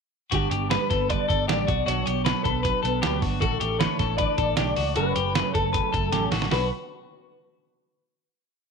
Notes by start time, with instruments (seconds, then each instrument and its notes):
0.31 fingered electric bass G1, steel-string acoustic guitar G2 D3 G3 B3 D4, clean electric guitar F#4 G4, kick, closed hi-hat
0.51 fingered electric bass G1, steel-string acoustic guitar G3 B3 D4, clean electric guitar G4, closed hi-hat
0.70 steel-string acoustic guitar G2 D3 G3 B3 D4, clean electric guitar B4, snare, closed hi-hat
0.90 fingered electric bass G1, steel-string acoustic guitar B3 D4, clean electric guitar A4, kick, snare, closed hi-hat
0.95 steel-string acoustic guitar G3
1.09 steel-string acoustic guitar D3 G3 B3, clean electric guitar B4 D5, kick, closed hi-hat
1.14 steel-string acoustic guitar D4
1.29 fingered electric bass G1, steel-string acoustic guitar B3 D4, clean electric guitar A4, kick, closed hi-hat
1.33 steel-string acoustic guitar G3
1.48 fingered electric bass A1, steel-string acoustic guitar G2 D3 G3 B3 D4, clean electric guitar G4 D5, snare, closed hi-hat
1.67 fingered electric bass B1, steel-string acoustic guitar F#3 B3 D4, clean electric guitar F#4, kick, closed hi-hat
1.86 fingered electric bass B1, steel-string acoustic guitar B2 F#3 B3 D4, clean electric guitar F#4 C#5, closed hi-hat
2.06 fingered electric bass B1, steel-string acoustic guitar F#3 B3 D4, clean electric guitar G4, closed hi-hat
2.25 steel-string acoustic guitar B2 F#3 B3 D4, clean electric guitar B4, snare, closed hi-hat
2.43 fingered electric bass B1, steel-string acoustic guitar B3 D4, clean electric guitar A4 B4, kick, closed hi-hat
2.48 steel-string acoustic guitar F#3
2.63 steel-string acoustic guitar B2 F#3 B3, clean electric guitar B4, kick, closed hi-hat
2.67 steel-string acoustic guitar D4
2.83 fingered electric bass B1, steel-string acoustic guitar F#3 B3 D4, clean electric guitar A4, closed hi-hat
3.02 fingered electric bass D2, steel-string acoustic guitar B2 F#3 B3 D4, clean electric guitar G4, snare, closed hi-hat
3.22 fingered electric bass G1, steel-string acoustic guitar F#3 B3 D4, clean electric guitar F#4, kick, open hi-hat
3.40 fingered electric bass A1, steel-string acoustic guitar A2 D3 E3 A3 D4, clean electric guitar F#4 A4, kick, closed hi-hat
3.60 fingered electric bass A1, steel-string acoustic guitar E3 A3 D4, clean electric guitar G4, closed hi-hat
3.79 steel-string acoustic guitar A2 D3 E3 A3 D4, clean electric guitar B4 C#5, snare, closed hi-hat
3.98 fingered electric bass A1, steel-string acoustic guitar E3 A3 D4, clean electric guitar A4, kick, snare, closed hi-hat
4.17 steel-string acoustic guitar D3 E3 A3 D4, clean electric guitar B4 D5, kick, closed hi-hat
4.38 fingered electric bass A1, steel-string acoustic guitar E3 A3 D4, clean electric guitar A4, kick, closed hi-hat
4.56 fingered electric bass B1, steel-string acoustic guitar A2 D3 E3 A3 D4, clean electric guitar G4 D5, snare, closed hi-hat
4.76 fingered electric bass C#2, steel-string acoustic guitar E3 A3, clean electric guitar F#4, open hi-hat
4.96 fingered electric bass F#1, steel-string acoustic guitar F#2 C#3 F#3 A3 C#4, clean electric guitar F#4 B4, closed hi-hat
5.16 fingered electric bass F#1, steel-string acoustic guitar F#3 A3 C#4, clean electric guitar G4, closed hi-hat
5.35 steel-string acoustic guitar F#2 C#3 F#3 A3 C#4, clean electric guitar B4, snare, closed hi-hat
5.54 fingered electric bass F#1, steel-string acoustic guitar F#3 A3 C#4, clean electric guitar A4, kick, closed hi-hat
5.73 steel-string acoustic guitar C#3 F#3 A3, clean electric guitar B4, kick, closed hi-hat
5.77 steel-string acoustic guitar C#4
5.93 fingered electric bass F#1, steel-string acoustic guitar F#3 A3 C#4, clean electric guitar A4, kick, closed hi-hat
6.12 fingered electric bass A1, steel-string acoustic guitar F#2 C#3 F#3 A3 C#4, clean electric guitar G4, snare, closed hi-hat
6.32 fingered electric bass A1, steel-string acoustic guitar F#3 A3 C#4, clean electric guitar F#4, snare, open hi-hat
6.42 snare
6.51 fingered electric bass B1, steel-string acoustic guitar B2 F#3 B3 D4, clean electric guitar F#4 B4, snare, open hi-hat